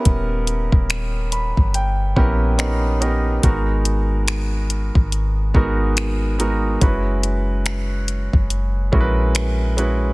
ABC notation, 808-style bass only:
X:1
M:4/4
L:1/16
Q:"Swing 16ths" 1/4=71
K:G#m
V:1 name="808-style bass" clef=bass
D,,,3 D,,,4 =G,,,3 A,,,6 | G,,,6- G,,, G,,,3 G,,,6 | F,,,6- F,,, F,,,3 A,,,6 |]